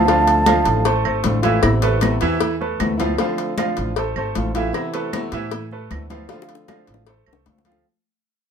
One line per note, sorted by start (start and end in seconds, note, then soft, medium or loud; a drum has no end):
0.00 0.61 D2 medium
0.00 1.21 A5 loud
0.06 0.44 D3 medium
0.06 0.40 F3 medium
0.06 0.45 A3 medium
0.06 0.46 C4 medium
0.06 0.47 F4 medium
0.06 0.41 F4 medium
0.06 0.41 F5 medium
0.06 cowbell loud
0.06 high conga soft
0.27 cowbell medium
0.27 high conga soft
0.46 0.84 D3 medium
0.46 0.79 F3 medium
0.46 0.85 A3 medium
0.46 0.85 C4 medium
0.46 0.79 F4 medium
0.46 0.85 F4 medium
0.46 0.79 F5 medium
0.46 cowbell medium
0.46 high conga medium
0.46 claves medium
0.65 1.02 A1 loud
0.65 cowbell medium
0.65 high conga soft
0.85 1.02 A3 medium
0.85 1.02 A4 medium
0.85 1.02 C5 medium
0.85 muted nylon-string guitar stroke medium
0.85 cowbell loud
0.85 high conga soft
1.05 1.23 G#1 medium
1.05 1.37 A3 medium
1.05 1.37 A4 medium
1.05 1.37 C5 medium
1.05 high conga soft
1.05 claves medium
1.24 1.59 A1 loud
1.24 1.43 D3 medium
1.24 1.43 A3 soft
1.24 1.42 C4 medium
1.24 1.41 F4 medium
1.24 cowbell medium
1.24 high conga medium
1.42 1.60 E3 medium
1.42 1.62 A3 medium
1.42 1.61 C4 medium
1.42 1.60 E4 medium
1.42 1.62 F4 medium
1.42 1.60 E5 medium
1.42 cowbell medium
1.42 high conga medium
1.61 2.18 A1 medium
1.61 1.99 C3 medium
1.61 2.00 E3 medium
1.61 2.01 B3 medium
1.61 2.00 C4 medium
1.61 2.02 E4 medium
1.61 cowbell loud
1.61 high conga soft
1.61 claves medium
1.82 2.15 A3 medium
1.82 2.15 A4 medium
1.82 2.15 B4 medium
1.82 cowbell medium
1.82 high conga soft
2.01 2.39 C3 medium
2.01 2.39 E3 medium
2.01 2.40 B3 medium
2.01 2.39 C4 medium
2.01 2.40 E4 medium
2.01 cowbell medium
2.01 high conga medium
2.01 claves medium
2.21 2.76 E2 loud
2.21 2.54 E3 loud
2.21 2.54 E4 loud
2.21 2.54 E5 medium
2.21 cowbell medium
2.40 muted nylon-string guitar stroke medium
2.40 cowbell loud
2.40 high conga soft
2.61 2.93 A3 medium
2.61 2.93 A4 medium
2.61 2.93 B4 medium
2.61 high conga soft
2.79 3.14 D2 loud
2.79 2.98 E3 soft
2.79 2.97 B3 medium
2.79 2.98 C4 medium
2.79 2.96 E4 medium
2.79 cowbell medium
2.79 high conga medium
2.79 claves medium
2.97 3.17 E3 medium
2.97 3.16 F3 medium
2.97 3.18 B3 medium
2.97 3.18 C4 medium
2.97 3.17 E4 medium
2.97 3.16 F4 loud
2.97 3.16 F5 medium
2.97 cowbell medium
2.97 high conga medium
3.18 3.56 D3 medium
3.18 3.51 F3 medium
3.18 3.57 A3 medium
3.18 3.57 C4 medium
3.18 3.57 F4 medium
3.18 3.51 F4 medium
3.18 3.52 F5 medium
3.18 cowbell loud
3.18 high conga soft
3.38 cowbell medium
3.38 high conga soft
3.57 3.95 D3 medium
3.57 3.90 F3 medium
3.57 3.95 A3 medium
3.57 3.95 C4 medium
3.57 3.90 F4 medium
3.57 3.96 F4 medium
3.57 3.90 F5 medium
3.57 cowbell medium
3.57 high conga medium
3.57 claves medium
3.77 4.14 A1 loud
3.77 cowbell medium
3.77 high conga soft
3.96 4.13 A3 medium
3.96 4.13 A4 medium
3.96 4.13 C5 medium
3.96 muted nylon-string guitar stroke medium
3.96 cowbell loud
3.96 high conga soft
4.16 4.34 G#1 medium
4.16 4.48 A3 medium
4.16 4.49 A4 medium
4.16 4.49 C5 medium
4.16 high conga soft
4.16 claves medium
4.34 4.70 A1 loud
4.34 4.54 D3 medium
4.34 4.54 A3 medium
4.34 4.55 C4 medium
4.34 4.53 F4 medium
4.34 cowbell medium
4.34 high conga medium
4.55 4.87 E3 medium
4.55 4.74 A3 medium
4.55 4.74 C4 medium
4.55 4.87 E4 medium
4.55 4.73 F4 medium
4.55 4.88 E5 medium
4.55 cowbell medium
4.55 high conga medium
4.74 5.12 C3 medium
4.74 5.12 E3 medium
4.74 5.13 B3 medium
4.74 5.12 C4 medium
4.74 5.13 E4 medium
4.74 cowbell loud
4.74 high conga soft
4.74 claves medium
4.94 5.26 A3 medium
4.94 5.26 A4 medium
4.94 5.26 B4 medium
4.94 cowbell medium
4.94 high conga soft
5.13 5.51 C3 medium
5.13 5.51 E3 medium
5.13 5.52 B3 medium
5.13 5.51 C4 medium
5.13 5.52 E4 medium
5.13 cowbell medium
5.13 high conga loud
5.13 claves medium
5.32 5.87 A2 loud
5.32 5.65 E3 medium
5.32 5.65 E4 medium
5.32 5.65 E5 medium
5.32 cowbell medium
5.51 muted nylon-string guitar stroke medium
5.51 cowbell loud
5.51 high conga soft
5.71 6.04 A3 medium
5.71 6.04 A4 medium
5.71 6.04 B4 medium
5.71 high conga soft
5.91 6.25 D2 loud
5.91 6.10 E3 medium
5.91 6.10 B3 medium
5.91 6.10 C4 medium
5.91 6.09 E4 medium
5.91 cowbell medium
5.91 high conga medium
5.91 claves medium
6.10 6.30 E3 medium
6.10 6.26 F3 loud
6.10 6.30 B3 medium
6.10 6.30 C4 medium
6.10 6.29 E4 medium
6.10 6.27 F4 medium
6.10 6.27 F5 loud
6.10 cowbell medium
6.10 high conga medium
6.29 6.67 D3 medium
6.29 6.62 F3 medium
6.29 6.68 A3 medium
6.29 6.69 C4 medium
6.29 6.62 F4 medium
6.29 6.69 F4 medium
6.29 6.62 F5 medium
6.29 cowbell loud
6.29 high bongo medium
6.29 high conga soft
6.42 high bongo medium
6.49 cowbell medium
6.49 high conga soft
6.55 low bongo medium
6.68 7.07 D3 medium
6.68 7.00 F3 medium
6.68 7.07 A3 medium
6.68 7.08 C4 medium
6.68 7.01 F4 medium
6.68 7.08 F4 medium
6.68 7.01 F5 medium
6.68 cowbell medium
6.68 high bongo loud
6.68 high conga medium
6.68 claves medium
6.87 7.24 A1 loud
6.87 cowbell medium
6.87 high conga soft
6.94 low bongo medium
7.07 7.24 A3 medium
7.07 7.24 A4 medium
7.07 7.24 C5 medium
7.07 muted nylon-string guitar stroke medium
7.07 cowbell loud
7.07 high conga soft
7.26 7.45 C2 medium
7.26 7.59 A3 medium
7.26 7.59 A4 medium
7.26 7.59 C5 medium
7.26 high conga soft
7.26 claves medium
7.33 low bongo loud
7.46 7.81 D2 medium
7.46 7.65 D3 medium
7.46 7.66 A3 soft
7.46 7.66 C4 medium
7.46 7.66 F4 medium
7.46 cowbell medium
7.46 low bongo medium
7.46 high conga loud
7.58 low bongo medium
7.65 7.82 F3 medium
7.65 7.85 C4 medium
7.65 7.82 F4 medium
7.65 7.85 F4 medium
7.65 7.82 F5 medium
7.65 cowbell medium
7.65 high conga medium
7.69 7.86 A3 medium
7.69 low bongo medium